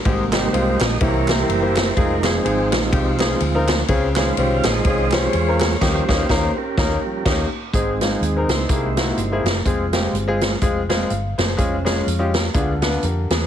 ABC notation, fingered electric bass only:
X:1
M:4/4
L:1/8
Q:"Swing" 1/4=125
K:Ab
V:1 name="Fingered electric bass" clef=bass
A,,,2 C,, B,,, C,,2 _G,,,2 | F,,,2 A,,, B,,, C,,2 =D,,2 | D,,2 C,, B,,, C,,2 _F,,2 | E,, E,, E,, z E,, z E,, z |
A,,,2 E,, D,, C,,2 G,,, _G,,, | F,,,2 G,,,2 F,,,2 G,,, _G,,, | F,,,2 F,,2 =D,,2 F,, _F,, |]